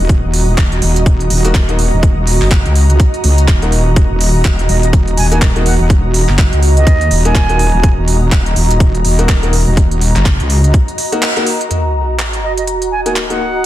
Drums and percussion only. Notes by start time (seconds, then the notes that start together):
0.09 kick, closed hi-hat
0.34 open hi-hat
0.58 kick, clap, closed hi-hat
0.72 closed hi-hat
0.82 open hi-hat
0.96 closed hi-hat
1.06 kick, closed hi-hat
1.20 closed hi-hat
1.30 open hi-hat
1.45 closed hi-hat
1.54 kick, clap, closed hi-hat
1.69 closed hi-hat
1.79 open hi-hat
2.03 kick, closed hi-hat
2.27 open hi-hat
2.42 clap
2.51 kick, clap, closed hi-hat
2.66 closed hi-hat
2.75 open hi-hat
2.90 closed hi-hat
3.00 kick, closed hi-hat
3.14 closed hi-hat
3.24 open hi-hat
3.38 closed hi-hat
3.48 kick, clap, closed hi-hat
3.62 closed hi-hat
3.72 open hi-hat
3.96 kick, closed hi-hat
4.21 open hi-hat
4.45 kick, clap, closed hi-hat
4.59 closed hi-hat
4.69 open hi-hat
4.83 closed hi-hat
4.93 kick, closed hi-hat
5.08 closed hi-hat
5.17 open hi-hat
5.32 closed hi-hat
5.42 kick, clap, closed hi-hat
5.56 closed hi-hat
5.66 open hi-hat
5.90 kick, closed hi-hat
6.14 open hi-hat
6.29 clap
6.38 kick, clap, closed hi-hat
6.53 closed hi-hat
6.63 open hi-hat
6.77 closed hi-hat
6.87 kick, closed hi-hat
7.01 closed hi-hat
7.11 open hi-hat
7.25 closed hi-hat
7.35 kick, clap, closed hi-hat
7.49 closed hi-hat
7.59 open hi-hat
7.83 kick, closed hi-hat
8.08 open hi-hat
8.32 kick, clap, closed hi-hat
8.46 closed hi-hat
8.56 open hi-hat
8.70 closed hi-hat
8.80 kick, closed hi-hat
8.95 closed hi-hat
9.05 open hi-hat
9.19 closed hi-hat
9.29 kick, clap, closed hi-hat
9.43 closed hi-hat
9.53 open hi-hat
9.77 kick, closed hi-hat
9.91 closed hi-hat
10.01 open hi-hat
10.16 clap, closed hi-hat
10.25 kick, clap, closed hi-hat
10.40 closed hi-hat
10.50 open hi-hat
10.64 closed hi-hat
10.74 kick, closed hi-hat
10.88 closed hi-hat
10.98 open hi-hat
11.12 closed hi-hat
11.22 clap, closed hi-hat
11.37 closed hi-hat
11.46 open hi-hat
11.61 closed hi-hat
11.71 closed hi-hat
12.19 clap, closed hi-hat
12.33 closed hi-hat
12.57 closed hi-hat
12.67 closed hi-hat
12.82 closed hi-hat
13.06 closed hi-hat
13.16 clap, closed hi-hat
13.30 closed hi-hat